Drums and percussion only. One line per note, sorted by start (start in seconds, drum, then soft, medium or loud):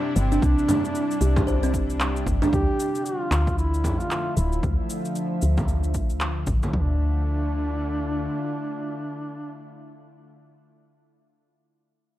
0.16 cabasa medium
0.32 cabasa soft
0.42 kick loud
0.42 cabasa soft
0.58 cabasa soft
0.68 frame drum medium
0.68 cabasa medium
0.85 cabasa soft
0.95 cabasa soft
1.11 cabasa soft
1.21 cabasa medium
1.36 kick loud
1.36 frame drum loud
1.36 cabasa soft
1.48 cabasa soft
1.63 cabasa soft
1.74 kick medium
1.74 cabasa medium
1.90 cabasa soft
2.00 clap medium
2.00 cabasa soft
2.16 cabasa soft
2.27 kick loud
2.27 cabasa medium
2.42 frame drum medium
2.42 cabasa soft
2.53 kick loud
2.53 cabasa soft
2.80 cabasa medium
2.95 cabasa soft
3.06 cabasa soft
3.32 clap medium
3.32 cabasa medium
3.47 kick loud
3.47 cabasa soft
3.58 cabasa soft
3.74 cabasa soft
3.84 kick medium
3.84 frame drum medium
3.84 cabasa medium
4.00 cabasa soft
4.11 clap medium
4.11 cabasa soft
4.37 cabasa medium
4.52 cabasa soft
4.63 kick loud
4.63 cabasa soft
4.90 cabasa medium
5.05 cabasa soft
5.15 cabasa soft
5.42 cabasa medium
5.57 kick loud
5.57 frame drum medium
5.57 cabasa soft
5.68 cabasa soft
5.84 cabasa soft
5.94 kick medium
5.94 cabasa medium
6.10 cabasa soft
6.21 clap medium
6.21 cabasa soft
6.47 kick loud
6.47 cabasa medium
6.63 frame drum medium
6.63 cabasa soft
6.73 kick medium
6.73 floor tom medium